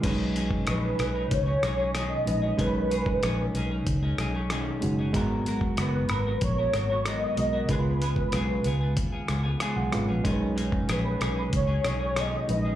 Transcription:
<<
  \new Staff \with { instrumentName = "Soft synth lead" } { \time 4/4 \key b \lydian \tempo 4 = 94 r4 b'4 cis''4 dis''4 | b'2 r2 | r4 b'4 cis''4 dis''4 | b'2 r2 |
r4 b'4 cis''4 dis''4 | }
  \new Staff \with { instrumentName = "Reed electric piano" } { \time 4/4 \key b \lydian <gis cis' dis' b'>4.~ <gis cis' dis' b'>16 r4. r16 <gis cis' dis' b'>8 | <gis cis' dis' ais' b'>4.~ <gis cis' dis' ais' b'>16 r4. r16 <gis cis' dis' fis'>8 | <gis b fis' ais''>4.~ <gis b fis' ais''>16 r4. r16 <gis b fis' ais'>8 | <gis cis' eis' b'>4.~ <gis cis' eis' b'>16 r4 r16 gis''16 fis''16 <gis cis' eis' b' eis''>8 |
<gis cis' dis' ais' b'>4.~ <gis cis' dis' ais' b'>16 r4. r16 <gis cis' dis' b'>8 | }
  \new Staff \with { instrumentName = "Clean electric guitar" } { \time 4/4 \key b \lydian <b, dis fis cis' dis' gis'>8 <fis cis' dis' gis'>8 <dis fis cis' dis' gis'>8 <fis cis' dis' gis'>16 <fis cis' dis' gis'>8 <fis cis' dis' gis'>16 <fis cis' dis' gis'>16 <fis cis' dis' gis'>16 <b, dis fis cis' dis' gis'>8. <fis cis' dis' gis'>16 | <b, dis fis cis' dis' gis'>8 <fis cis' dis' gis'>8 <dis fis cis' dis' gis'>8 <fis cis' dis' gis'>16 <fis cis' dis' gis'>8 <fis cis' dis' gis'>16 <fis cis' dis' gis'>16 <fis cis' dis' gis'>16 <b, dis fis cis' dis' gis'>8. <fis cis' dis' gis'>16 | <gis, dis fis b fis' ais'>8 <fis b fis' ais'>8 <gis, dis fis b fis'>8 <fis b fis' ais'>16 <fis b fis' ais'>8 <fis b fis' ais'>16 <fis b fis' ais'>16 <fis b fis' ais'>16 <gis, dis fis b fis' ais'>8. <fis b fis' ais'>16 | <cis gis b eis' gis'>8 <gis b eis' gis'>8 <cis gis b eis' gis'>8 <gis b eis' gis'>16 <b eis' gis'>8 <b eis' gis'>16 <gis b eis' gis'>16 <b eis' gis'>16 <cis gis b eis' gis'>8. <b eis' gis'>16 |
<b, dis fis cis' dis' gis'>8 <fis cis' dis' gis'>8 <dis fis cis' dis' gis'>8 <fis cis' dis' gis'>16 <fis cis' dis' gis'>8 <fis cis' dis' gis'>16 <fis cis' dis' gis'>16 <fis cis' dis' gis'>16 <b, dis fis cis' dis' gis'>8. <fis cis' dis' gis'>16 | }
  \new Staff \with { instrumentName = "Fingered electric bass" } { \clef bass \time 4/4 \key b \lydian b,,4 ais,,8 b,,8 cis,8 b,,4 ais,,8 | b,,4 ais,,8 b,,8 cis,8 b,,4 fis,,8 | gis,,4 fis,,8 gis,,8 ais,,8 gis,,4 b,,8 | cis,4 b,,8 cis,8 dis,8 cis,8 r16 b,,16 gis,,16 ais,,16 |
b,,4 ais,,8 b,,8 cis,8 b,,4 ais,,8 | }
  \new DrumStaff \with { instrumentName = "Drums" } \drummode { \time 4/4 <cymc hh bd>8 hh16 bd16 <hh ss>8 <hh ss>8 <hh bd>8 <hh ss>8 <hh ss>8 hh8 | <hh bd>8 hh16 bd16 <hh ss>8 hh8 <hh bd>8 <hh ss>8 <hh ss>8 hh8 | <hh bd>8 hh16 bd16 <hh ss>8 <hh ss>8 <hh bd>8 <hh ss>8 <hh ss>8 hh8 | <hh bd>8 hh16 bd16 <hh ss>8 hh8 <hh bd>8 <hh ss>8 <hh ss>8 <hh ss>8 |
<hh bd>8 hh16 bd16 <hh ss>8 <hh ss>8 <hh bd>8 <hh ss>8 <hh ss>8 hh8 | }
>>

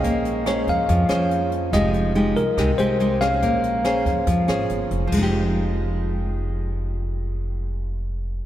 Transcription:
<<
  \new Staff \with { instrumentName = "Tine electric piano" } { \time 4/4 \key f \minor \tempo 4 = 142 ees''4 des''8 f''2 r8 | ees''4. bes'4 c''4 f''8~ | f''2. r4 | r1 |
r1 | }
  \new Staff \with { instrumentName = "Nylon-string guitar" } { \time 4/4 \key f \minor << { <des' aes' c''>4 <des' aes' c''>4. <des' aes' c''>4. | <aes ees' g'>4 <aes ees' g'>8 r8 <aes ees' g'>8 <aes ees' g'>8 <aes ees' g'>8 <des' aes' c''>8~ | <des' aes' c''>4 <des' aes' c''>4 r8 <des' aes' c''>4. | <f aes ees' g'>1~ |
<f aes ees' g'>1 | } \\ { bes2 f2 | f2 c2 | bes2 f2 | r1 |
r1 | } >> }
  \new Staff \with { instrumentName = "Upright bass" } { \clef bass \time 4/4 \key f \minor bes,,4. f,16 r16 f,8 f,4. | f,,4. c,16 r16 c,8 c,4. | bes,,4. f,16 r16 f,8 aes,,8 g,,8 f,,8 | f,,1~ |
f,,1 | }
  \new DrumStaff \with { instrumentName = "Drums" } \drummode { \time 4/4 <hh bd>8 hh8 <hh ss>8 <hh bd>8 <hh bd>8 <hh ss>8 hh8 hh8 | <hh bd ss>8 hh8 hh8 hh8 <hh bd ss>8 hh8 hh8 <hh ss>8 | <hh bd>8 hh8 <hh ss>8 <hh bd>8 <hh bd>8 <hh ss>8 hh8 hh8 | <cymc bd>4 r4 r4 r4 |
r4 r4 r4 r4 | }
>>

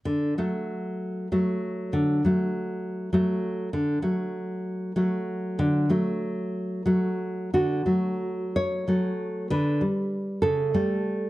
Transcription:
\new Staff \with { instrumentName = "Nylon-string guitar" } { \clef bass \time 6/8 \key d \major \tempo 4. = 65 << { r2. | r2. | r2. | r2. |
fis'4. cis''4. | b'4. a'4. | } \\ { d8 <fis a>4. <fis a>4 | d8 <fis a>4. <fis a>4 | d8 <fis a>4. <fis a>4 | d8 <fis a>4. <fis a>4 |
d8 <fis a>4. <fis a>4 | d8 g4 cis8 <g a>4 | } >> }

